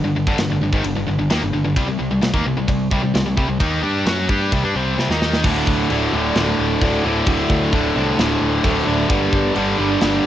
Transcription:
0.04 G1 G2 D3
0.15 G1 G2 D3
0.27 G1 G2 D3, kick
0.38 G1 G2 D3, snare, ride bell
0.50 G1 G2 D3
0.61 G1 G2 D3
0.73 G#1 G#2 D#3, kick
0.84 G1 G2 D3, ride bell
0.96 G1 G2 D3
1.07 G1 G2 D3
1.19 G1 G2 D3
1.30 D#2 D#3 A#3, snare, ride bell
1.42 G1 G2 D3
1.53 G1 G2 D3
1.64 G1 G2 D3
1.76 C2 C3 G3, kick, ride bell
1.87 C2 C3 G3
1.99 C2 C3 G3
2.11 C2 C3 G3
2.21 C2 C3 G3, snare, ride bell
2.34 D#2 D#3 A#3, kick
2.45 C2 C3 G3
2.57 C2 C3 G3
2.68 C2 C3 G3, kick, ride bell
2.91 C2 C3 G3, kick
3.03 C2 C3 G3
3.14 C2 C3 G3, snare, ride bell
3.25 C2 C3 G3
3.37 C2 C3 G3, kick
3.48 C2 C3 G3
3.60 D#2 D#3 A#3 D#4, kick, ride bell
3.82 G2 G3 D4 G4
4.06 F#2 F#3 C#4 F#4, snare, ride bell
4.29 G2 G3 D4 G4, kick
4.52 C2 C3 G3, kick, ride bell
4.64 G2 G3 D4
4.75 C2 C3 G3 C4
4.98 C2 C3 G3, snare
5.09 D#2 D#3 A#3 D#4, snare
5.22 snare
5.33 snare
5.44 D1 D2 A2 D3 F#3 A3 D4 A4 D5, kick, crash
5.67 D1, kick
5.90 D1 D2 A2 D3, crash
6.13 D1 D2 A2 D3
6.35 D1 D2 A2 D3, snare, crash
6.59 D1
6.81 D1 D2 A2 D3, kick, crash
7.04 D1 D2 A2 D3
7.26 D1 D2 A2 D3 C5, kick, crash
7.50 D2, kick
7.72 D1 D2 A2 D3, kick, crash
7.95 C2 D2 A2 D3
8.18 D1 D2 A2 D3, snare, crash
8.41 D1
8.64 D1 D2 A2 D3, kick, crash
8.87 D1 D2 A2 D3
9.10 G1 G2 D3 G3 A#3 A#4 D5, kick, crash
9.33 G1, kick
9.56 G1 G2 D3 G3, crash
9.79 G1 G2 D3 G3
10.01 G1 G2 D3 G3, snare, crash

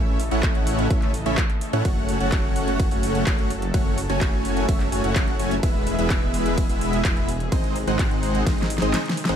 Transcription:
Already playing: A1 C#3 E3 A3 C#4 E4 A4 C#5 D#5 E5
0.20 open hi-hat
0.31 A1 A3 C#4 E4 C#5 F#5, closed hi-hat
0.43 kick, clap, closed hi-hat
0.55 closed hi-hat
0.67 open hi-hat
0.79 closed hi-hat
0.90 A1 A3 C#4 E4 C#5 E5, kick, closed hi-hat
1.02 clap, closed hi-hat
1.14 open hi-hat
1.26 A1 A3 C#4 E4 C#5 E5, closed hi-hat
1.37 kick, clap, closed hi-hat
1.50 closed hi-hat
1.61 open hi-hat
1.73 A2 A3 C#4 E4 C#5 F#5, closed hi-hat
1.85 F#1 F#3 A3 C#4 F#4 C#5 F#5, kick, closed hi-hat, ride
2.09 open hi-hat
2.20 F#1 A3 C#4 F#4 C#5 F#5, closed hi-hat
2.32 kick, clap, closed hi-hat, ride
2.56 open hi-hat
2.68 closed hi-hat
2.80 kick, closed hi-hat, ride
2.91 F#1 A3 C#4 F#4 C#5 F#5, open hi-hat
3.03 open hi-hat
3.15 closed hi-hat
3.27 F#1 A3 C#4 F#4 C#5 F#5, kick, clap, closed hi-hat, ride
3.39 closed hi-hat
3.50 open hi-hat
3.62 closed hi-hat
3.74 F#1 A3 C#4 E4 F#4 C#5 F#5, kick, closed hi-hat, ride
3.98 open hi-hat
4.10 F#1 A3 C#4 F#4 C#5 G#5, closed hi-hat
4.21 kick, clap, closed hi-hat, ride
4.45 open hi-hat
4.57 closed hi-hat
4.69 F#1 A3 C#4 F#4 C#5 E5, kick, closed hi-hat, ride
4.80 clap, closed hi-hat
4.92 F#1 A3 C#4 F#4 C#5 G#5, open hi-hat
5.04 F#1 A3 C#4 F#4 C#5 F#5, closed hi-hat
5.16 kick, clap, closed hi-hat, ride
5.28 closed hi-hat
5.39 F#1 A3 C#4 F#4 C#5 G#5, open hi-hat
5.51 closed hi-hat
5.63 E1 B2 E3 G#3 B3 E4 G#4 B4 E5, kick, closed hi-hat, ride
5.87 open hi-hat
5.99 E1 G#3 B3 E4 B4 E5, closed hi-hat
6.10 kick, clap, closed hi-hat, ride
6.34 open hi-hat
6.46 closed hi-hat
6.58 kick, closed hi-hat, ride
6.69 E1 G#3 B3 E4 B4 E5, open hi-hat
6.81 open hi-hat
6.93 closed hi-hat
7.05 E1 G#3 B3 E4 B4 E5, kick, clap, closed hi-hat, ride
7.17 closed hi-hat
7.29 open hi-hat
7.40 closed hi-hat
7.52 G#1 C3 D#3 G#3 C4 D#4 C5 D#5, kick, closed hi-hat, ride
7.64 closed hi-hat
7.76 open hi-hat
7.87 G#1 G#3 C4 D#4 C5 F#5, closed hi-hat
7.99 kick, clap, closed hi-hat, ride
8.11 closed hi-hat
8.23 open hi-hat
8.35 closed hi-hat
8.47 G#1 G#3 C4 D#4 C5 D#5, kick, snare, closed hi-hat, ride
8.58 snare, closed hi-hat
8.70 open hi-hat
8.78 G#1 G#3 C4 D#4 C5 D#5, snare, closed hi-hat
8.94 snare, clap, closed hi-hat, ride
9.06 snare, closed hi-hat
9.17 open hi-hat
9.25 snare, closed hi-hat
9.29 G#1 G#3 C4 D#4 C5 F#5

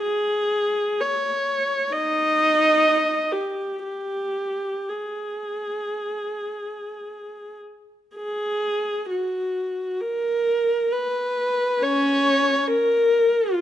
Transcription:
0.02 G#4
1.01 C#5
1.92 D#4 D#5
3.32 G4
3.84 G4
4.89 G#4
8.16 G#4
9.10 F#4
10.01 A#4
10.93 B4
11.82 C#4 C#5
12.67 A#4
13.51 F4

